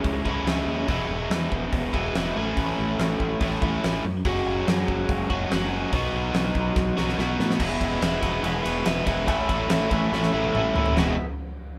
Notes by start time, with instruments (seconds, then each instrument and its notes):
Already playing: overdriven electric guitar C#3 E3 G#3 C#4 E4
0.04 fingered electric bass C#2, kick, open hi-hat
0.25 fingered electric bass C#2, overdriven electric guitar C#3 E3 G#3 C#4 E4, kick
0.44 fingered electric bass C#2, overdriven electric guitar C#3 E3 G#3, snare, open hi-hat
0.48 overdriven electric guitar C#4 E4
0.66 fingered electric bass D#2
0.87 fingered electric bass E1, overdriven electric guitar E2 B2 E3 G#3 B3, kick, open hi-hat
0.91 overdriven electric guitar E4
1.08 fingered electric bass E1
1.30 fingered electric bass E2, snare, open hi-hat
1.51 fingered electric bass E1, kick
1.72 fingered electric bass E1, kick, open hi-hat
1.93 fingered electric bass E1, overdriven electric guitar E2 B2 E3 G#3 B3 E4, kick
2.15 fingered electric bass E1, overdriven electric guitar E2 B2 E3 G#3 B3 E4, snare, open hi-hat
2.36 fingered electric bass A1, overdriven electric guitar A2 E3 A3 C#4 E4
2.57 fingered electric bass A1, kick, open hi-hat
2.79 fingered electric bass A1
2.99 fingered electric bass A1, snare, open hi-hat
3.20 fingered electric bass A1, kick
3.40 fingered electric bass A1, overdriven electric guitar A2 E3 A3 C#4 E4, kick, open hi-hat
3.61 fingered electric bass A1, overdriven electric guitar E3 A3 C#4 E4, kick
3.66 overdriven electric guitar A2
3.84 fingered electric bass A1, snare, open hi-hat
4.04 fingered electric bass F#2
4.25 fingered electric bass F#1, overdriven electric guitar F#3 G#3 C#4, kick, open hi-hat
4.29 overdriven electric guitar F#4
4.46 fingered electric bass F#1
4.68 fingered electric bass F#2, snare, open hi-hat
4.88 fingered electric bass F#1, kick
5.09 fingered electric bass F#1, kick, open hi-hat
5.30 fingered electric bass F#1, overdriven electric guitar G#3 C#4 F#4, kick
5.34 overdriven electric guitar F#3
5.51 fingered electric bass F#1, overdriven electric guitar F#3 G#3 C#4 F#4, snare, open hi-hat
5.92 fingered electric bass B1, overdriven electric guitar B2 F#3 B3 D#4 F#4, kick, open hi-hat
6.13 fingered electric bass B1
6.34 fingered electric bass B1, snare, open hi-hat
6.55 fingered electric bass B1, kick
6.76 fingered electric bass B1, kick, snare
6.97 fingered electric bass B1, overdriven electric guitar B2 F#3 B3 D#4 F#4, snare
7.09 snare
7.18 fingered electric bass B1, overdriven electric guitar B2 F#3 B3 D#4 F#4, snare
7.40 fingered electric bass A2, snare
7.51 snare
7.59 fingered electric bass E1, overdriven electric guitar E2 B2 E3 G#3 B3, tonewheel organ B3 F#4 G#4 E5, kick, crash
7.63 overdriven electric guitar E4
7.81 fingered electric bass E1, overdriven electric guitar E3 G#3 B3 E4, kick, ride
8.01 fingered electric bass E1, overdriven electric guitar E3 G#3 B3 E4, snare, ride
8.21 fingered electric bass E1, overdriven electric guitar E2 B2 E3 G#3 B3 E4, kick, ride
8.43 fingered electric bass E1, overdriven electric guitar E3 G#3 B3 E4, ride
8.63 fingered electric bass E1, overdriven electric guitar E2 B2 E3 G#3 B3 E4, ride
8.84 fingered electric bass E1, overdriven electric guitar E3 G#3 B3 E4, snare, ride
9.05 fingered electric bass E1, overdriven electric guitar E3 G#3 B3 E4, kick, ride
9.26 fingered electric bass A1, overdriven electric guitar A2 E3 A3 C#4 E4, tonewheel organ C#4 E4 A4 E5, kick, ride
9.48 fingered electric bass A1, overdriven electric guitar A3 C#4 E4, kick, ride
9.68 fingered electric bass A1, overdriven electric guitar E3 A3 C#4 E4, snare, ride
9.90 fingered electric bass A1, overdriven electric guitar A2 E3 A3 C#4 E4, kick, ride
10.12 fingered electric bass A1, overdriven electric guitar E3 A3 C#4 E4, snare
10.23 snare
10.33 fingered electric bass A1, overdriven electric guitar A2 E3 A3 C#4 E4
10.44 high tom
10.55 fingered electric bass A1, overdriven electric guitar E3 A3 C#4 E4, mid tom
10.74 fingered electric bass D#2, overdriven electric guitar C#4 E4, floor tom
10.79 overdriven electric guitar A3
10.86 floor tom
10.96 fingered electric bass E1, overdriven electric guitar E2 B2 E3 G#3 B3 E4, tonewheel organ B3 F#4 G#4 E5, snare, floor tom